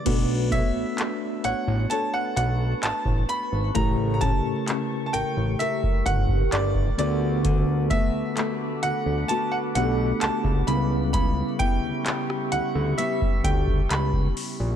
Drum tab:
CC |x---------------|----------------|----------------|----------------|
HH |x-x-x-x-x-x-x-x-|x-x-x-x-x-x-x-x-|x-x-x-x-x-x-x-x-|x-x-x-x-x-x-x-o-|
CP |----x-------x---|----x-------x---|----x-------x---|----x-------x---|
SD |----------------|----------------|----------------|-----r----------|
BD |o-o----------o--|o-o------ooo-o--|o-o----------o--|o-o------ooo-o--|